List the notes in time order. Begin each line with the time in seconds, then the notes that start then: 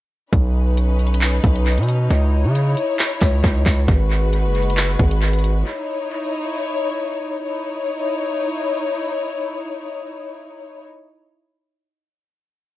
0.33 B1 C#4 D#4 B4, kick, closed hi-hat
0.77 closed hi-hat
0.99 closed hi-hat
1.07 closed hi-hat
1.14 closed hi-hat
1.21 clap, closed hi-hat
1.44 B1, kick, closed hi-hat
1.56 closed hi-hat
1.66 closed hi-hat
1.72 closed hi-hat
1.78 B2, closed hi-hat
1.83 closed hi-hat
1.89 closed hi-hat
2.10 C#2 E4 C#5, closed hi-hat
2.44 C#3
2.55 closed hi-hat
2.77 closed hi-hat
2.99 clap, closed hi-hat
3.21 C#2, kick, clap, closed hi-hat
3.44 C#2, kick, closed hi-hat
3.66 C#2, kick, clap, open hi-hat
3.88 G#1 G#3 F#4 B4, kick, closed hi-hat
4.33 closed hi-hat
4.45 F#1
4.55 closed hi-hat
4.62 closed hi-hat
4.70 closed hi-hat
4.77 clap, closed hi-hat
4.99 G#1, kick, closed hi-hat
5.11 closed hi-hat
5.22 closed hi-hat
5.27 closed hi-hat
5.33 closed hi-hat
5.39 closed hi-hat
5.44 closed hi-hat
5.66 D#4 E4 C#5
7.44 D#4 E4 C#5